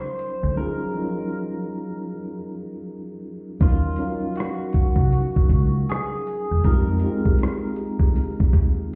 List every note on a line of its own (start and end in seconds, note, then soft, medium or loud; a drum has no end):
0.00 0.57 C5 loud
0.19 closed hi-hat medium
0.43 0.56 D2 medium
0.56 0.88 F#3 medium
0.56 0.89 C#4 medium
0.56 0.89 D#4 medium
0.56 0.89 F4 medium
0.56 0.90 G#4 medium
0.56 2.81 A#4 medium
0.95 1.03 F3 medium
0.95 2.14 C#4 medium
0.95 2.15 D#4 medium
0.95 2.15 F4 medium
0.95 2.16 A#4 medium
1.02 2.17 F#3 medium
3.60 3.95 D#2 loud
3.60 3.92 F#3 medium
3.60 3.92 C#4 medium
3.60 3.93 D#4 medium
3.60 4.37 F4 medium
3.60 3.93 F4 medium
3.60 3.94 A#4 medium
3.60 kick loud
3.60 closed hi-hat medium
3.96 5.17 F#3 medium
3.96 5.18 C#4 medium
3.96 closed hi-hat medium
4.00 5.18 D#4 medium
4.00 5.19 A#4 medium
4.00 5.19 F5 medium
4.36 5.85 F#4 medium
4.36 closed hi-hat medium
4.40 cross-stick loud
4.73 kick medium
4.73 closed hi-hat medium
4.96 5.10 C2 medium
4.96 kick medium
5.12 closed hi-hat medium
5.36 kick medium
5.49 5.84 C#2 medium
5.49 kick medium
5.49 closed hi-hat medium
5.90 6.65 G#4 loud
5.90 cross-stick loud
5.90 closed hi-hat medium
6.27 closed hi-hat medium
6.51 6.64 E2 medium
6.64 6.98 F2 loud
6.64 6.96 G#3 medium
6.64 6.96 C4 medium
6.64 6.97 D#4 medium
6.64 6.97 F4 medium
6.64 6.98 G4 medium
6.64 8.95 A#4 medium
6.64 kick loud
6.64 closed hi-hat medium
7.00 8.21 G#3 medium
7.00 8.22 C4 medium
7.00 closed hi-hat medium
7.04 8.22 D#4 medium
7.04 8.22 F4 medium
7.04 7.12 G4 medium
7.12 8.26 G#4 medium
7.25 kick medium
7.39 closed hi-hat medium
7.43 cross-stick loud
7.76 closed hi-hat medium
7.99 8.14 D2 medium
7.99 kick medium
8.16 closed hi-hat medium
8.40 kick medium
8.53 8.87 D#2 medium
8.53 kick medium
8.53 closed hi-hat medium